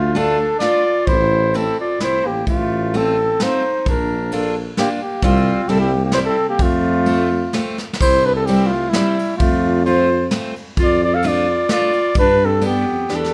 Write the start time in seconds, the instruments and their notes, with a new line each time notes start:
Already playing: tuba D2, clarinet A3, flugelhorn F4
0.14 steel-string acoustic guitar A3 D4 F4, clarinet D4, flugelhorn A4, ride
0.59 steel-string acoustic guitar A3 D4 F4, clarinet F4, flugelhorn D5, snare, ride
1.07 tuba A1, clarinet E4, flugelhorn C5, kick, ride
1.54 steel-string acoustic guitar A3 C4 E4, clarinet C4, flugelhorn A4, ride
1.80 clarinet F4, flugelhorn D5
1.99 tuba C2, steel-string acoustic guitar A3 C4 E4, clarinet E4, snare, ride
2.04 flugelhorn C5
2.25 tuba A1, clarinet A#3, flugelhorn G4
2.46 tuba A1, clarinet A3, flugelhorn F4, kick, ride
2.93 steel-string acoustic guitar A3 C4 F4, clarinet C4, flugelhorn A4, ride
3.40 steel-string acoustic guitar A3 C4 F4, flugelhorn C5, snare, ride
3.44 clarinet D#4
3.86 tuba A#1, clarinet D4, flugelhorn A#4, kick, ride
4.31 steel-string acoustic guitar A#3 D4 F4, flugelhorn A4, ride
4.36 clarinet D4
4.77 steel-string acoustic guitar A#3 D4 F4, clarinet A#3, flugelhorn G4, snare, ride
5.02 clarinet A#3, flugelhorn G4
5.22 tuba C2, steel-string acoustic guitar G3 C4 F4, clarinet C4, flugelhorn F4, kick, ride
5.68 tuba C2, steel-string acoustic guitar G3 C4 E4, clarinet C4, flugelhorn A4, ride
5.80 clarinet A#3, flugelhorn G4
6.03 clarinet A#3, flugelhorn G4
6.12 steel-string acoustic guitar G3 C4 E4, clarinet E4, flugelhorn C5, snare, ride
6.25 clarinet C4, flugelhorn A4
6.49 clarinet A#3, flugelhorn G4
6.59 tuba F2, clarinet A3, flugelhorn F4, kick, ride
7.06 steel-string acoustic guitar A3 C4 F4, ride
7.53 steel-string acoustic guitar A3 C4 F4, snare, ride
7.78 snare
7.93 snare
8.00 tuba C2, clarinet E4, flugelhorn C5, kick, crash
8.25 clarinet D4, flugelhorn B4
8.36 clarinet C4, flugelhorn A4
8.46 steel-string acoustic guitar G3 C4 E4, clarinet C4, flugelhorn G4, ride
8.66 clarinet A3, flugelhorn F4
8.89 clarinet G3, flugelhorn E4, snare, ride
8.95 steel-string acoustic guitar G3 C4 E4
9.19 ride
9.36 tuba F2, clarinet A3, flugelhorn F4, kick, ride
9.85 steel-string acoustic guitar A3 C4 F4, clarinet F4, flugelhorn C5, ride
10.31 steel-string acoustic guitar A3 C4 F4, snare, ride
10.56 ride
10.77 tuba F2, clarinet F4, kick, ride
10.83 flugelhorn D5
11.04 clarinet F4, flugelhorn D5
11.14 clarinet A4, flugelhorn F5
11.22 steel-string acoustic guitar A3 D4 F4, clarinet F4, ride
11.27 flugelhorn D5
11.69 steel-string acoustic guitar A3 D4 F4, clarinet F4, flugelhorn D5, snare, ride
11.93 ride
12.14 tuba G2, kick, ride
12.19 clarinet D4, flugelhorn B4
12.45 clarinet C4, flugelhorn A4
12.62 steel-string acoustic guitar B3 D4 G4, ride
12.66 clarinet B3, flugelhorn G4
12.88 tuba F2
13.09 tuba E2, steel-string acoustic guitar B3 D4 G4, snare
13.14 clarinet D4, flugelhorn A4
13.24 snare